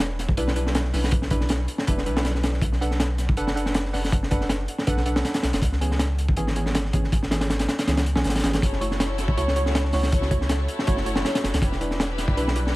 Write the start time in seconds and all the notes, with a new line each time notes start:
Already playing: E1
0.00 closed hi-hat
0.19 snare, closed hi-hat
0.29 kick
0.37 B1 G3 D4 E4 B4, closed hi-hat
0.48 snare
0.56 G3 D4 E4 B4, closed hi-hat
0.66 snare
0.75 snare, closed hi-hat
0.84 snare
0.93 B1 G3 D4 E4 B4, snare, open hi-hat
1.04 snare
1.11 kick, closed hi-hat
1.22 snare
1.30 G3 D4 E4 B4, kick, closed hi-hat
1.41 snare
1.49 snare, closed hi-hat
1.68 closed hi-hat
1.78 snare
1.87 E1 G3 D4 E4 B4, kick, closed hi-hat
1.98 snare
2.06 B1 G3 D4 E4 B4, closed hi-hat
2.16 G3 D4 E4 B4, snare
2.25 snare, closed hi-hat
2.35 snare
2.43 snare, closed hi-hat
2.53 snare
2.62 B1, kick, closed hi-hat
2.72 snare
2.81 D4 A4 B4 F#5, closed hi-hat
2.91 snare
3.00 snare, closed hi-hat
3.18 snare, closed hi-hat
3.29 kick
3.37 F#1 D4 A4 B4 F#5, closed hi-hat
3.47 snare
3.56 D4 A4 B4 F#5, closed hi-hat
3.66 snare
3.74 snare, closed hi-hat
3.85 snare
3.93 F#1 D4 A4 B4 F#5, snare, open hi-hat
4.04 snare
4.12 kick, closed hi-hat
4.23 snare
4.31 D4 A4 B4 F#5, kick, closed hi-hat
4.41 snare
4.49 snare, closed hi-hat
4.68 closed hi-hat
4.78 snare
4.87 B1 D4 A4 B4 F#5, kick, closed hi-hat
4.97 snare
5.06 D4 A4 B4 F#5, closed hi-hat
5.16 D4 A4 B4 F#5, snare
5.25 snare, closed hi-hat
5.34 snare, closed hi-hat
5.43 B1, snare, closed hi-hat
5.53 F#1, snare, closed hi-hat
5.62 C#2, kick, closed hi-hat
5.72 snare
5.81 E3 B3 C#4 G#4, closed hi-hat
5.91 snare
5.99 snare, closed hi-hat
6.18 closed hi-hat
6.28 kick
6.37 G#1 E3 B3 C#4 G#4, closed hi-hat
6.47 snare
6.56 E3 B3 C#4 G#4, closed hi-hat
6.66 snare
6.75 snare, closed hi-hat
6.85 snare
6.93 G#1 E3 B3 C#4 G#4, kick, closed hi-hat
7.04 snare
7.12 kick, closed hi-hat
7.23 snare
7.31 E3 B3 C#4 G#4, snare, closed hi-hat
7.41 snare, closed hi-hat
7.50 snare, closed hi-hat
7.59 snare, closed hi-hat
7.68 snare, closed hi-hat
7.79 snare, closed hi-hat
7.87 C#2 E3 B3 C#4 G#4, snare, closed hi-hat
7.97 snare, closed hi-hat
8.06 closed hi-hat
8.16 B1 E3 B3 C#4 G#4, snare
8.24 G#1, snare, closed hi-hat
8.29 snare, closed hi-hat
8.36 snare, closed hi-hat
8.39 snare, closed hi-hat
8.43 G#1 E3 B3 C#4 G#4, snare, closed hi-hat
8.53 snare, closed hi-hat
8.62 F#1 E4 F#4 A4 C#5, kick, closed hi-hat
8.72 snare
8.81 A3 E4 F#4 C#5, closed hi-hat
8.90 E4 F#4 A4 C#5, snare
9.00 snare, closed hi-hat
9.18 snare, closed hi-hat
9.28 kick
9.37 C#2 A3 E4 F#4 C#5, closed hi-hat
9.48 snare
9.56 A3 E4 F#4 C#5, closed hi-hat
9.66 E4 F#4 A4 C#5, snare
9.75 snare, closed hi-hat
9.85 snare
9.93 C#2 A3 E4 F#4 C#5, snare, open hi-hat
10.03 snare
10.12 E4 F#4 A4 C#5, kick, closed hi-hat
10.22 snare
10.31 A3 E4 F#4 C#5, kick, closed hi-hat
10.41 E4 F#4 A4 C#5, snare
10.49 snare, closed hi-hat
10.68 closed hi-hat
10.79 snare
10.87 F#1 A3 E4 F#4 C#5, kick, closed hi-hat
10.97 snare
11.06 A3 E4 F#4 C#5, closed hi-hat
11.15 A3 E4 F#4 C#5, snare
11.25 snare, closed hi-hat
11.35 snare, closed hi-hat
11.43 F#1, snare, closed hi-hat
11.53 C#2, snare, closed hi-hat
11.62 E1 D4 E4 G4 B4, kick, closed hi-hat
11.72 snare
11.81 G3 D4 E4 B4, closed hi-hat
11.90 D4 E4 G4 B4, snare
12.00 snare, closed hi-hat
12.18 snare, closed hi-hat
12.28 kick
12.37 B1 G3 D4 E4 B4, closed hi-hat
12.48 snare
12.56 G3 D4 E4 B4, closed hi-hat
12.65 D4 E4 G4 B4, snare